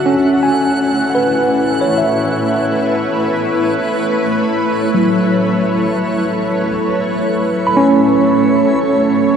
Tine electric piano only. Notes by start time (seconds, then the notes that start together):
Already playing: F#4
0.06 C#4
0.43 G#5
1.10 F#5
1.15 B4
1.81 C#5
1.98 E5
4.94 F#3
7.67 B5
7.77 C#4